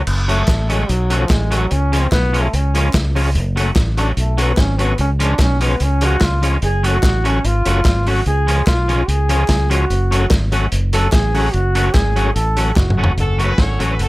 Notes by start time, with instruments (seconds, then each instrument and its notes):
0.07 fingered electric bass F#1, crash
0.28 clean electric guitar F#3 A3 C#4 F#4, trombone A3, tonewheel organ C#4 F#4 A4 C#5, closed hi-hat
0.48 fingered electric bass A1, kick, snare, clap, closed hi-hat
0.69 clean electric guitar F#3 A3 C#4 F#4, trombone G#3, tonewheel organ C#4 F#4 A4 C#5, closed hi-hat
0.89 fingered electric bass B1, trombone F#3, closed hi-hat
1.10 clean electric guitar F#3 A3 C#4 F#4, tonewheel organ C#4 F#4 A4 C#5, closed hi-hat
1.17 trombone F3
1.29 fingered electric bass A1, trombone G#3, kick, snare, clap, closed hi-hat
1.51 clean electric guitar F#3 A3 C#4 F#4, tonewheel organ C#4 F#4 A4 C#5, closed hi-hat
1.58 trombone F#3
1.71 fingered electric bass C#2, trombone C#4, closed hi-hat
1.92 clean electric guitar F3 G#3 C#4 F4, tonewheel organ C#4 F4 G#4 C#5, closed hi-hat
2.00 trombone C4
2.12 fingered electric bass B1, trombone B3, kick, snare, clap, closed hi-hat
2.33 clean electric guitar F3 G#3 C#4 F4, tonewheel organ C#4 F4 G#4 C#5, closed hi-hat
2.41 trombone A3
2.53 fingered electric bass C#2, trombone C#4, closed hi-hat
2.74 clean electric guitar F3 G#3 C#4 F4, tonewheel organ C#4 F4 G#4 C#5, closed hi-hat
2.94 fingered electric bass C#2, kick, snare, clap, closed hi-hat
3.15 clean electric guitar F3 G#3 C#4 F4, tonewheel organ C#4 F4 G#4 C#5, open hi-hat
3.35 fingered electric bass F#1, closed hi-hat
3.56 clean electric guitar F#3 A3 C#4 F#4, tonewheel organ C#4 F#4 A4 C#5, closed hi-hat
3.76 fingered electric bass A1, kick, snare, clap, closed hi-hat
3.97 clean electric guitar F#3 A3 C#4 F#4, tonewheel organ C#4 F#4 A4 C#5, trombone D4, closed hi-hat
4.17 fingered electric bass B1, trombone A3, closed hi-hat
4.38 clean electric guitar F#3 A3 C#4 F#4, trombone B3, tonewheel organ C#4 F#4 A4 C#5, closed hi-hat
4.57 fingered electric bass G#1, trombone C#4, kick, snare, clap, closed hi-hat
4.79 clean electric guitar F#3 A3 C#4 F#4, trombone B3, tonewheel organ C#4 F#4 A4 C#5, closed hi-hat
4.98 fingered electric bass C#2, trombone C#4, closed hi-hat
5.19 clean electric guitar F3 G#3 C#4 F4, tonewheel organ C#4 F4 G#4 C#5, trombone D4, closed hi-hat
5.39 fingered electric bass B1, trombone C#4, kick, snare, clap, closed hi-hat
5.61 clean electric guitar F3 G#3 C#4 F4, trombone B3, tonewheel organ C#4 F4 G#4 C#5, closed hi-hat
5.80 fingered electric bass C#2, trombone C#4, closed hi-hat
6.01 clean electric guitar F3 G#3 C#4 F4, tonewheel organ C#4 F4 G#4 C#5, trombone F#4, closed hi-hat
6.21 fingered electric bass C#2, trombone F4, kick, snare, clap, closed hi-hat
6.42 clean electric guitar F3 G#3 C#4 F4, tonewheel organ C#4 F4 G#4 C#5, closed hi-hat
6.62 fingered electric bass F#1, trombone G#4, closed hi-hat
6.83 clean electric guitar F#3 A3 C#4 F#4, tonewheel organ C#4 F#4 A4 C#5, trombone F#4, closed hi-hat
7.03 fingered electric bass A1, kick, snare, clap, closed hi-hat
7.24 clean electric guitar F#3 A3 C#4 F#4, tonewheel organ C#4 F#4 A4 C#5, trombone C#4, closed hi-hat
7.44 fingered electric bass G#1, trombone F4, closed hi-hat
7.65 fingered electric bass F#1, clean electric guitar F#3 A3 C#4 F#4, tonewheel organ C#4 F#4 A4 C#5, closed hi-hat
7.85 fingered electric bass G#1, kick, snare, clap, closed hi-hat
8.06 clean electric guitar F#3 A3 C#4 F#4, tonewheel organ C#4 F#4 A4 C#5, trombone F#4, open hi-hat
8.26 fingered electric bass C#2, trombone G#4, closed hi-hat
8.47 clean electric guitar F3 G#3 C#4 F4, tonewheel organ C#4 F4 G#4 C#5, closed hi-hat
8.67 fingered electric bass B1, trombone F4, kick, snare, clap, closed hi-hat
8.88 clean electric guitar F3 G#3 C#4 F4, tonewheel organ C#4 F4 G#4 C#5, closed hi-hat
9.08 fingered electric bass C#2, trombone G#4, closed hi-hat
9.29 clean electric guitar F3 G#3 C#4 F4, tonewheel organ C#4 F4 G#4 C#5, closed hi-hat
9.48 fingered electric bass C#2, kick, snare, clap, closed hi-hat
9.70 clean electric guitar F3 G#3 C#4 F4, tonewheel organ C#4 F4 G#4 C#5, trombone F#4, closed hi-hat
9.90 fingered electric bass F#1, closed hi-hat
10.11 clean electric guitar F#3 A3 C#4 F#4, tonewheel organ C#4 F#4 A4 C#5, closed hi-hat
10.30 fingered electric bass G#1, kick, snare, clap, closed hi-hat
10.52 clean electric guitar F#3 A3 C#4 F#4, tonewheel organ C#4 F#4 A4 C#5, closed hi-hat
10.72 fingered electric bass F#1, closed hi-hat
10.93 clean electric guitar F#3 A3 C#4 F#4, tonewheel organ C#4 F#4 A4 C#5, trombone A4, closed hi-hat
11.12 fingered electric bass A1, trombone G#4, kick, snare, clap, closed hi-hat
11.34 clean electric guitar F#3 A3 C#4 F#4, tonewheel organ C#4 F#4 A4 C#5, open hi-hat
11.53 fingered electric bass F#1, trombone F#4, closed hi-hat
11.75 clean electric guitar F#3 A3 C#4 F#4, tonewheel organ C#4 F#4 A4 C#5, closed hi-hat
11.93 fingered electric bass G#1, trombone G#4, kick, snare, clap, closed hi-hat
12.16 clean electric guitar F#3 A3 C#4 F#4, tonewheel organ C#4 F#4 A4 C#5, closed hi-hat
12.35 fingered electric bass A1, trombone A4, closed hi-hat
12.57 clean electric guitar F#3 A3 C#4 F#4, tonewheel organ C#4 F#4 A4 C#5, closed hi-hat
12.76 fingered electric bass F#1, trombone F#4, kick, snare, clap
12.90 mid tom
12.98 clean electric guitar F#3 A3 C#4 F#4, tonewheel organ C#4 F#4 A4 C#5
13.04 floor tom
13.17 fingered electric bass F#1, horn section C#4 F#4 A4, closed hi-hat
13.38 clean electric guitar F#3 A3 C#4 F#4, tonewheel organ C#4 F#4 A4 C#5, horn section B4, closed hi-hat
13.58 fingered electric bass G#1, horn section F#4 A4 C#5, kick, snare, closed hi-hat
13.79 fingered electric bass A1, clean electric guitar F#3 A3 C#4 F#4, tonewheel organ C#4 F#4 A4 C#5, closed hi-hat
13.91 horn section B4
13.99 fingered electric bass F#1, horn section C#4 F#4 A4, closed hi-hat